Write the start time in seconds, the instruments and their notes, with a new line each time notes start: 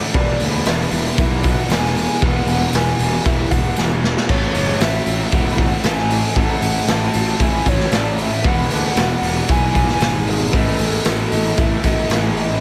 Already playing: distorted electric guitar A2 E3 A3, clean electric guitar A2 E3 A3 C#4 F#4, twelve-string acoustic guitar F#4 A4
0.13 fingered electric bass E1, clean electric guitar E2 B2 E3 G#3 B3 F#4, distorted electric guitar E2 B2 E3, twelve-string acoustic guitar B4, soft synth lead D5, kick, open hi-hat
0.39 fingered electric bass D2, distorted electric guitar B2 E3, twelve-string acoustic guitar G#4, open hi-hat, tambourine
0.65 fingered electric bass E1, distorted electric guitar E2 B2 E3, clean electric guitar E3 G#3 B3 F#4, twelve-string acoustic guitar F#4, soft synth lead E5, snare, open hi-hat, tambourine
0.91 fingered electric bass E1, distorted electric guitar B2 E3, clean electric guitar E3 G#3 B3 F#4, open hi-hat, tambourine
1.17 fingered electric bass B1, distorted electric guitar E2 B2 E3, twelve-string acoustic guitar E4, soft synth lead F#5, kick, open hi-hat, tambourine
1.43 distorted electric guitar E2 B2 E3, clean electric guitar E3 G#3 B3 F#4, twelve-string acoustic guitar F#4, kick, open hi-hat, tambourine
1.69 fingered electric bass E1, distorted electric guitar E2 B2 E3, clean electric guitar E2 B2 E3 G#3 B3 F#4, twelve-string acoustic guitar G#4, soft synth lead G#5, snare, open hi-hat, tambourine
1.85 snare
1.94 distorted electric guitar B2 E3, open hi-hat, tambourine
2.20 fingered electric bass E1, distorted electric guitar E2 B2 E3, clean electric guitar E2 B2 E3 G#3 B3 F#4, twelve-string acoustic guitar B4, soft synth lead F#5, kick, open hi-hat, tambourine
2.46 fingered electric bass E1, distorted electric guitar B2 E3, twelve-string acoustic guitar G#4, open hi-hat, tambourine
2.72 fingered electric bass E1, distorted electric guitar E2 B2 E3, clean electric guitar E3 G#3 B3 F#4, twelve-string acoustic guitar F#4, soft synth lead G#5, snare, open hi-hat, tambourine
2.98 fingered electric bass E1, distorted electric guitar B2 E3, clean electric guitar E3 G#3 B3 F#4, open hi-hat, tambourine
3.24 fingered electric bass E1, distorted electric guitar E2 B2 E3, twelve-string acoustic guitar E4, soft synth lead E5, kick, open hi-hat, tambourine
3.50 fingered electric bass E1, distorted electric guitar E2 B2 E3, clean electric guitar E3 G#3 B3 F#4, twelve-string acoustic guitar F#4, soft synth lead F#5, kick, open hi-hat, tambourine
3.76 fingered electric bass E1, distorted electric guitar E2 B2 E3, clean electric guitar E2 B2 E3 G#3 B3 F#4, twelve-string acoustic guitar G#4, snare, tambourine
4.02 distorted electric guitar B2 E3, snare
4.17 snare
4.28 fingered electric bass A1, distorted electric guitar A2 E3 A3, clean electric guitar A2 E3 A3 C#4 F#4, twelve-string acoustic guitar A4, soft synth lead C#5, kick, open hi-hat, crash
4.54 fingered electric bass F#1, distorted electric guitar E3 A3, twelve-string acoustic guitar G#4, open hi-hat, tambourine
4.80 fingered electric bass A1, distorted electric guitar A2 E3 A3, clean electric guitar E3 A3 C#4 F#4, twelve-string acoustic guitar F#4, soft synth lead E5, snare, open hi-hat, tambourine
5.06 fingered electric bass A1, distorted electric guitar E3 A3, clean electric guitar A3 C#4 F#4, soft synth lead E5, open hi-hat, tambourine
5.32 fingered electric bass E1, distorted electric guitar A2 E3 A3, twelve-string acoustic guitar E4, soft synth lead F#5, kick, open hi-hat, tambourine
5.58 distorted electric guitar A2 E3 A3, clean electric guitar A3 C#4 F#4, twelve-string acoustic guitar F#4, kick, open hi-hat
5.84 fingered electric bass A1, distorted electric guitar A2 E3 A3, clean electric guitar A2 E3 A3 C#4 F#4, twelve-string acoustic guitar A4, soft synth lead G#5, snare, open hi-hat, tambourine
5.99 snare
6.10 distorted electric guitar E3 A3, open hi-hat, tambourine
6.36 fingered electric bass A1, clean electric guitar A2 E3 A3 C#4 F#4, distorted electric guitar A2 E3 A3, twelve-string acoustic guitar A4, soft synth lead F#5, kick, open hi-hat
6.62 fingered electric bass A1, distorted electric guitar E3 A3, twelve-string acoustic guitar G#4, open hi-hat, tambourine
6.87 fingered electric bass A1, distorted electric guitar A2 E3 A3, clean electric guitar E3 A3 C#4 F#4, twelve-string acoustic guitar F#4, soft synth lead A5, snare, open hi-hat, tambourine
7.13 fingered electric bass A1, distorted electric guitar E3 A3, clean electric guitar A3 C#4 F#4, open hi-hat, tambourine
7.39 fingered electric bass A1, distorted electric guitar A2 E3 A3, twelve-string acoustic guitar E4, soft synth lead G#5, kick, open hi-hat, tambourine
7.65 fingered electric bass A1, distorted electric guitar A2 E3 A3, clean electric guitar A3 C#4 F#4, twelve-string acoustic guitar F#4, soft synth lead C#5, kick, open hi-hat, tambourine
7.80 snare
7.91 fingered electric bass A1, distorted electric guitar A2 E3 A3, clean electric guitar A2 E3 A3 C#4 F#4, twelve-string acoustic guitar A4, soft synth lead D5, snare, open hi-hat, tambourine
8.17 distorted electric guitar E3 A3, soft synth lead E5, open hi-hat, tambourine
8.44 fingered electric bass E1, distorted electric guitar E2 B2 E3, clean electric guitar E2 B2 E3 G#3 B3 F#4, twelve-string acoustic guitar B4, soft synth lead F#5, kick, open hi-hat
8.69 fingered electric bass D2, distorted electric guitar B2 E3, twelve-string acoustic guitar G#4, open hi-hat, tambourine
8.96 fingered electric bass E1, distorted electric guitar E2 B2 E3, clean electric guitar E3 G#3 B3 F#4, twelve-string acoustic guitar F#4, snare, open hi-hat, tambourine
9.21 fingered electric bass E1, distorted electric guitar B2 E3, clean electric guitar E3 G#3 B3 F#4, open hi-hat
9.47 fingered electric bass B1, distorted electric guitar E2 B2 E3, twelve-string acoustic guitar E4, soft synth lead G#5, kick, open hi-hat, tambourine
9.73 distorted electric guitar E2 B2 E3, clean electric guitar E3 G#3 B3 F#4, twelve-string acoustic guitar F#4, kick, open hi-hat, tambourine
9.89 snare
10.00 fingered electric bass G#1, clean electric guitar E2 B2 E3 G#3 B3 F#4, distorted electric guitar E2 B2 E3, twelve-string acoustic guitar G#4, snare, open hi-hat, tambourine
10.26 distorted electric guitar B2 E3, soft synth lead G#4, open hi-hat, tambourine
10.52 fingered electric bass A1, distorted electric guitar A2 E3 A3, clean electric guitar A2 E3 A3 B3 E4, soft synth lead A4, twelve-string acoustic guitar B4, kick, open hi-hat, tambourine
10.78 fingered electric bass A1, distorted electric guitar E3 A3, twelve-string acoustic guitar G#4, open hi-hat, tambourine
11.04 fingered electric bass A1, distorted electric guitar A2 E3 A3, clean electric guitar E3 A3 B3 E4, twelve-string acoustic guitar F#4, snare, open hi-hat, tambourine
11.30 fingered electric bass A1, distorted electric guitar E3 A3, clean electric guitar A3 B3 E4, open hi-hat, tambourine
11.56 fingered electric bass A1, distorted electric guitar A2 E3 A3, twelve-string acoustic guitar E4, kick, open hi-hat, tambourine
11.83 fingered electric bass A1, distorted electric guitar A2 E3 A3, clean electric guitar A3 B3 E4, twelve-string acoustic guitar F#4, kick, open hi-hat, tambourine
12.09 fingered electric bass A1, distorted electric guitar A2 E3 A3, clean electric guitar A2 E3 A3 B3 E4, twelve-string acoustic guitar G#4, snare, open hi-hat, tambourine
12.34 distorted electric guitar E3 A3, open hi-hat